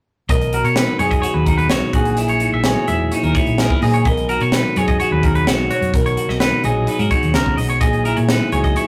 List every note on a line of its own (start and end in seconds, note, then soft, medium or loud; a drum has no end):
0.29 0.61 B1 medium
0.29 1.46 B2 medium
0.29 1.00 A#4 medium
0.29 0.53 D#5 medium
0.29 kick loud
0.29 closed hi-hat medium
0.42 closed hi-hat soft
0.53 1.23 F#4 soft
0.53 0.65 A#4 medium
0.53 closed hi-hat medium
0.64 0.85 B2 medium
0.64 0.76 C#5 medium
0.64 closed hi-hat soft
0.76 1.47 D#4 medium
0.76 0.99 B4 medium
0.76 snare loud
0.76 closed hi-hat medium
0.99 1.21 F#2 medium
0.99 2.64 F#3 medium
0.99 1.94 G#4 medium
0.99 1.11 C#5 medium
0.99 closed hi-hat medium
1.11 1.21 D#5 medium
1.11 kick medium
1.11 closed hi-hat soft
1.22 1.71 F#4 medium
1.22 1.34 C#5 medium
1.22 closed hi-hat medium
1.34 1.66 D#2 medium
1.34 1.45 B4 medium
1.45 1.91 B2 medium
1.45 2.21 D#4 medium
1.45 1.57 A#4 medium
1.45 kick medium
1.45 closed hi-hat medium
1.58 1.70 B4 medium
1.58 closed hi-hat soft
1.70 1.80 B1 medium
1.70 1.98 F#4 soft
1.70 1.94 C#5 medium
1.70 snare loud
1.70 closed hi-hat medium
1.93 2.48 A#1 medium
1.93 3.11 A#2 medium
1.93 2.17 F#4 medium
1.93 2.65 G#4 medium
1.93 kick medium
1.93 closed hi-hat medium
2.05 closed hi-hat soft
2.17 2.88 E4 medium
2.17 closed hi-hat medium
2.28 2.53 C#5 medium
2.28 closed hi-hat soft
2.40 3.13 D#4 soft
2.40 closed hi-hat medium
2.52 2.74 A#1 medium
2.52 2.65 E5 medium
2.64 4.76 F#3 medium
2.64 3.58 G#4 medium
2.64 2.88 C#5 medium
2.64 snare loud
2.64 closed hi-hat medium
2.88 3.09 E1 medium
2.88 3.36 E4 medium
2.88 3.12 E5 medium
2.88 closed hi-hat medium
3.12 3.80 A#2 medium
3.12 4.53 D#4 medium
3.12 3.23 C#5 medium
3.12 closed hi-hat medium
3.23 3.34 D#2 medium
3.23 3.35 A#4 medium
3.23 closed hi-hat soft
3.35 3.80 E4 medium
3.35 3.59 C#5 medium
3.35 kick medium
3.35 closed hi-hat medium
3.46 3.68 A#1 medium
3.46 closed hi-hat soft
3.58 3.70 G#4 medium
3.58 3.82 A#4 medium
3.58 snare medium
3.58 closed hi-hat medium
3.70 3.82 B4 soft
3.70 kick medium
3.82 4.07 A#2 medium
3.82 4.03 A#2 medium
3.82 4.06 G#4 medium
3.82 3.93 D#5 medium
3.82 open hi-hat medium
3.94 4.05 C#5 medium
3.94 closed hi-hat soft
4.05 4.37 B1 medium
4.05 5.22 B2 medium
4.05 4.77 A#4 medium
4.05 4.29 D#5 medium
4.05 kick loud
4.05 closed hi-hat medium
4.17 closed hi-hat soft
4.29 5.01 F#4 soft
4.29 4.41 A#4 medium
4.29 closed hi-hat medium
4.40 4.62 B2 medium
4.40 4.53 C#5 medium
4.40 closed hi-hat soft
4.52 5.23 D#4 medium
4.52 4.77 B4 medium
4.52 snare loud
4.52 closed hi-hat medium
4.76 4.97 F#2 medium
4.76 6.64 F#3 medium
4.76 5.70 G#4 medium
4.76 4.88 C#5 medium
4.76 closed hi-hat medium
4.88 4.99 D#5 medium
4.88 kick medium
4.88 closed hi-hat soft
5.00 5.47 F#4 medium
5.00 5.11 C#5 medium
5.00 closed hi-hat medium
5.11 5.43 D#2 medium
5.11 5.24 B4 medium
5.23 5.91 B2 medium
5.23 6.41 D#4 medium
5.23 5.35 A#4 medium
5.23 kick medium
5.23 closed hi-hat medium
5.35 5.47 B4 medium
5.35 closed hi-hat soft
5.46 5.67 B1 medium
5.46 6.17 F#4 medium
5.46 5.70 C#5 medium
5.46 snare loud
5.46 closed hi-hat medium
5.70 5.94 F#4 medium
5.70 5.94 C#5 medium
5.70 closed hi-hat medium
5.82 5.92 F#2 medium
5.82 closed hi-hat soft
5.94 6.15 B1 medium
5.94 7.09 B2 medium
5.94 6.64 A#4 medium
5.94 kick medium
5.94 closed hi-hat medium
6.06 6.29 C#5 medium
6.06 closed hi-hat soft
6.17 6.87 F#4 medium
6.17 closed hi-hat medium
6.28 6.50 B1 medium
6.28 6.40 D#5 medium
6.28 snare soft
6.40 6.87 D#4 medium
6.40 6.64 B4 medium
6.40 snare loud
6.40 closed hi-hat medium
6.64 6.85 A#1 medium
6.64 8.52 F#3 medium
6.64 7.81 G#4 medium
6.64 6.88 D#5 medium
6.64 closed hi-hat soft
6.87 6.99 D#4 medium
6.87 6.99 B4 medium
6.87 closed hi-hat medium
6.99 7.10 G#2 medium
6.99 7.82 F#4 soft
6.99 7.10 A#4 medium
6.99 closed hi-hat soft
7.10 7.55 B2 medium
7.10 8.08 D#4 medium
7.10 7.34 C#5 medium
7.10 kick medium
7.10 closed hi-hat medium
7.23 7.33 D#2 medium
7.23 closed hi-hat soft
7.34 7.56 C#2 medium
7.34 7.58 C#3 medium
7.34 7.57 A#4 medium
7.34 snare medium
7.34 closed hi-hat medium
7.46 kick medium
7.57 7.81 B1 medium
7.57 7.81 B2 medium
7.57 7.69 D#5 medium
7.57 open hi-hat medium
7.70 7.80 C#5 medium
7.70 closed hi-hat soft
7.81 8.13 A#1 medium
7.81 8.87 A#2 medium
7.81 8.53 G#4 medium
7.81 8.05 D#5 medium
7.81 kick medium
7.81 closed hi-hat medium
7.93 closed hi-hat soft
8.05 8.77 E4 medium
8.05 8.17 A#4 medium
8.05 closed hi-hat medium
8.17 8.38 A#2 medium
8.17 8.29 C#5 soft
8.17 closed hi-hat soft
8.29 8.87 D#4 medium
8.29 8.52 B4 medium
8.29 snare loud
8.29 closed hi-hat medium
8.52 8.73 C#2 medium
8.52 8.87 F#3 medium
8.52 8.87 G#4 medium
8.52 8.64 C#5 medium
8.52 closed hi-hat soft
8.64 8.76 D#5 medium
8.64 kick medium
8.64 closed hi-hat soft
8.76 8.87 E4 medium
8.76 8.87 C#5 medium
8.76 closed hi-hat medium